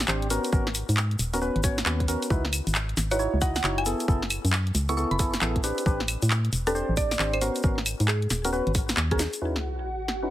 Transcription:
0.00 snare, closed hi-hat
0.07 G#1 C4 D4 G4 C5, clap, shaker
0.22 closed hi-hat
0.30 B3 C#4 F#4 A#4, open hi-hat, shaker
0.44 closed hi-hat, shaker
0.52 G#1 B3 C#4 F#4 A#4, kick, shaker
0.67 snare
0.75 open hi-hat, shaker
0.89 G#2, closed hi-hat, shaker
0.97 clap, shaker
1.11 closed hi-hat
1.19 D#1, open hi-hat, shaker
1.33 B3 C#4 F#4 A#4, closed hi-hat, shaker
1.41 B3 C#4 F#4 B4, shaker
1.56 G#1, closed hi-hat
1.64 B3 C#4 F#4 C#5, kick, open hi-hat, shaker
1.78 snare, closed hi-hat, shaker
1.86 D#2 B3 C#4 F#4 B4, clap, shaker
2.00 kick, closed hi-hat
2.08 B3 C#4 F#4 A#4, open hi-hat, shaker
2.22 closed hi-hat, shaker
2.30 C#2 D#4 E4 F#4 B4, kick, shaker
2.45 snare
2.53 open hi-hat, claves, shaker
2.67 G#1, closed hi-hat, shaker
2.75 clap, shaker
2.89 closed hi-hat
2.97 G#1, snare, open hi-hat, shaker
3.11 D#4 E4 F#4 B4 C#5, closed hi-hat, shaker
3.19 D#4 E4 F#4 C#5, shaker
3.34 C#2
3.41 D#4 E4 F#4 D#5 F#5, kick, open hi-hat, shaker
3.56 F#5, snare, closed hi-hat, shaker
3.63 F#1 D#4 E4 F#4 C#5, clap, shaker
3.78 G#5, closed hi-hat, claves
3.86 B3 E4 G#4 A4, open hi-hat, shaker
4.00 closed hi-hat, shaker
4.08 F#1 B3 E4 G#4 A4, kick, shaker
4.22 snare
4.30 open hi-hat, claves, shaker
4.45 F#2, closed hi-hat, shaker
4.53 clap, shaker
4.67 closed hi-hat
4.75 C#2, open hi-hat, shaker
4.89 B3 E4 G#4 A4 C#6, closed hi-hat, shaker
4.97 B3 E4 G#4 A4 C#6, shaker
5.11 F#1 B5, closed hi-hat
5.19 B3 E4 G#4 A4, kick, open hi-hat, shaker
5.34 snare, closed hi-hat, shaker
5.41 A1 B3 E4 G#4 A4, clap, shaker
5.56 kick, closed hi-hat
5.64 C4 D4 G4 B4, open hi-hat, shaker
5.78 closed hi-hat, shaker
5.86 A1 C4 D4 G4 B4, kick, shaker
6.00 snare
6.08 open hi-hat, claves, shaker
6.22 A2, closed hi-hat, shaker
6.30 clap, shaker
6.45 closed hi-hat
6.53 E1, open hi-hat, shaker
6.67 C4 D4 G4 A4 B4, closed hi-hat, shaker
6.75 C4 D4 G4 C5, shaker
6.89 A1
6.97 C4 D4 G4 D5, kick, open hi-hat, shaker
7.11 D5, snare, closed hi-hat, shaker
7.19 G#1 C4 D4 G4 C5, clap
7.33 C5, closed hi-hat, claves
7.41 B3 C#4 F#4 A#4 C5, open hi-hat, shaker
7.55 closed hi-hat, shaker
7.63 G#1 B3 C#4 F#4 A#4, kick, shaker
7.78 snare
7.86 open hi-hat, claves, shaker
8.00 G#2, closed hi-hat, shaker
8.08 G#4, clap, shaker
8.22 closed hi-hat
8.30 D#1, snare, open hi-hat, shaker
8.45 B3 C#4 F#4 A#4, closed hi-hat, shaker
8.52 B3 C#4 F#4 B4, shaker
8.67 G#1, closed hi-hat
8.75 kick, open hi-hat, shaker
8.89 snare, closed hi-hat, shaker
8.97 D#2, clap, shaker
9.11 B3 C#4 F#4 G#4 A#4, kick, closed hi-hat
9.19 snare, open hi-hat, shaker
9.33 closed hi-hat, shaker
9.41 C#4 D#4 E4 F#4 B4 F#5, sub drop
9.56 snare
10.08 snare
10.22 C#4 D#4 E4 F#4 B4

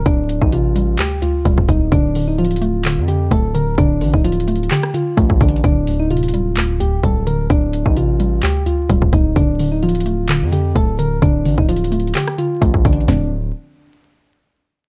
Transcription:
Already playing: D2 D3 G3
0.06 D1 D4, kick, closed hi-hat
0.29 closed hi-hat
0.41 A1 D#4, kick
0.52 C3 F4, closed hi-hat
0.76 G3, closed hi-hat
0.99 D2 G4, clap, closed hi-hat
1.22 D2 F4, closed hi-hat
1.45 D1 G3, kick, closed hi-hat
1.58 D1, kick
1.68 D1 D2 D#4, kick, closed hi-hat
1.92 D1 D3 D4, kick, closed hi-hat
2.15 D3, open hi-hat
2.27 D#4
2.38 F3 F4, closed hi-hat
2.45 closed hi-hat
2.51 closed hi-hat
2.56 closed hi-hat
2.61 A3, closed hi-hat
2.85 D3, clap, closed hi-hat
2.97 F2
3.08 D3 G4, closed hi-hat
3.31 D1 A3 A4, kick, closed hi-hat
3.54 D3 A#4, closed hi-hat
3.78 D1 D3 D4, kick, closed hi-hat
4.01 A1 D3, open hi-hat
4.13 D1 D#4, kick
4.24 F3 F4, closed hi-hat
4.32 closed hi-hat
4.40 closed hi-hat
4.48 A3, closed hi-hat
4.55 closed hi-hat
4.63 closed hi-hat
4.71 D3 G4, clap, closed hi-hat
4.83 cross-stick
4.94 D3 F4, closed hi-hat
5.17 A1 A3, kick, closed hi-hat
5.30 A1, kick
5.41 A1 D3 D4, kick, closed hi-hat
5.48 closed hi-hat
5.56 closed hi-hat
5.64 D1 D3 D4, kick, closed hi-hat
5.87 D2, open hi-hat
5.99 D#4
6.10 C3 F4, closed hi-hat
6.17 closed hi-hat
6.23 closed hi-hat
6.28 closed hi-hat
6.34 G3, closed hi-hat
6.57 D2, clap, closed hi-hat
6.80 D2 G4, closed hi-hat
7.03 D1 G3 A4, kick, closed hi-hat
7.27 D3 A#4, closed hi-hat
7.50 D1 D4, kick, closed hi-hat
7.73 closed hi-hat
7.86 A1 D#4, kick
7.97 C3 F4, closed hi-hat
8.20 G3, closed hi-hat
8.43 D2 G4, clap, closed hi-hat
8.66 D2 F4, closed hi-hat
8.90 D1 G3, kick, closed hi-hat
9.02 D1, kick
9.12 D1 D2 D#4, kick, closed hi-hat
9.36 D1 D3 D4, kick, closed hi-hat
9.59 D3, open hi-hat
9.72 D#4
9.83 F3 F4, closed hi-hat
9.89 closed hi-hat
9.95 closed hi-hat
10.00 closed hi-hat
10.06 A3, closed hi-hat
10.29 D3, clap, closed hi-hat
10.41 F2
10.52 D3 G4, closed hi-hat
10.75 D1 A3 A4, kick, closed hi-hat
10.99 D3 A#4, closed hi-hat
11.22 D1 D3 D4, kick, closed hi-hat
11.45 A1 D3, open hi-hat
11.58 D1 D#4, kick
11.69 F3 F4, closed hi-hat
11.76 closed hi-hat
11.84 closed hi-hat
11.92 A3, closed hi-hat
12.00 closed hi-hat
12.07 closed hi-hat
12.15 D3 G4, clap, closed hi-hat
12.28 cross-stick
12.38 D3 F4, closed hi-hat
12.61 A1 A3, kick, closed hi-hat
12.74 A1, kick
12.85 A1 D3 D4, kick, closed hi-hat
12.93 closed hi-hat
13.00 closed hi-hat
13.08 D1 D3 F3 A3 C4 D4, snare, floor tom

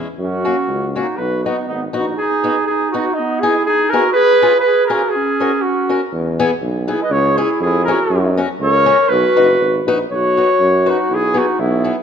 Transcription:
0.19 F#2 C#4 F#4
0.45 A#3 C#4 F#4
0.68 C#2
0.95 A#3 C#4 D#4 F#4
1.17 B1 B4
1.22 F#4
1.44 B3 D#4 F#4
1.50 B3
1.67 G#1 D#4
1.74 B3
1.93 A#1 B3 D#4 F#4
1.99 D#4
2.18 D#4 G#4
2.44 B3 D#4 F#4
2.66 G#4
2.70 D#4
2.91 B3 D#4 F#4
2.98 D#4
3.14 D#4
3.19 B3
3.41 B3 D#4 G#4
3.45 E4
3.66 D#4 G#4
3.90 B3 D#4 G#4 A#4
3.95 F#4
4.13 G#4 B4
4.42 C#4 F4 G#4
4.60 B4
4.66 G#4
4.87 C#4 F4 G#4 A#4
4.91 F#4
5.09 G#4
5.16 C#4
5.40 C#4 F#4 A#4
5.62 F#4
5.67 C#4
5.89 C#4 F#4 A#4
6.12 E2
6.40 B3 E4 G#4
6.61 B1
6.88 B3 E4 G#4
7.02 B4 D#5
7.10 C#2 C#5
7.15 G#4
7.37 C#4 E4 G#4
7.42 E4
7.60 F2 G#4
7.66 E4
7.85 C#4 E4 G#4 A#4
7.91 F#4
8.10 F#2
8.37 C#4 F#4 A#4
8.60 C#2 A#4 C#5
8.86 C#4 F#4 A#4
9.09 B1 B4
9.13 F#4
9.36 F#1 D#4 F#4 B4
9.60 G#1
9.85 A#1 D#4 F#4 B4
10.10 B1 C#5
10.15 F#4
10.37 D#4 F#4 B4
10.59 F#2
10.86 D#4 F#4 B4
11.10 B1 E4
11.14 G#4
11.34 B3 E4 F#4 G#4
11.38 D#4
11.59 B1 B3 E4
11.84 B3 E4 G#4

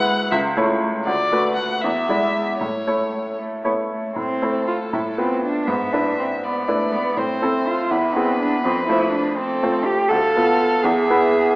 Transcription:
Already playing: D2 G#3 E4 B4 F#5
0.08 G#3
0.32 C#2 E5
0.57 A3 E4 C#5
0.82 A3
1.05 D2 D5
1.32 A3 F#4 B4
1.56 A3 F#5
1.81 E2 E5
2.09 G#3 E4 D5
2.35 G#3
2.59 A2 C#5
2.87 A3 E4 C#5
3.13 A3
3.38 A3
3.64 A3 B3 E4 C#5
3.90 A3
4.15 A2 C4 A4
4.42 A3 E4 C5
4.67 F4
4.93 A2 E4
5.18 B3 C4 F4 B4
5.44 D4
5.68 G#2 B3 E5
5.92 D4 E4 B4
6.19 C4
6.44 B3 D5
6.68 A3 D4 E4 B4
6.92 B3
7.17 A2 C4 C5
7.42 C4 E4 A4
7.68 F4
7.90 E2 E4 B4
8.14 B3 C4 E4 G#4
8.39 D4
8.64 F2 C4
8.88 A3 E4 F4 C5
9.12 D4
9.37 C4 A4
9.63 A3 F4 C5
9.86 G4
10.09 D2 A4
10.13 F5
10.36 B3 F4 B4
10.82 E2 G#4 E5
11.10 B3 E4 B4

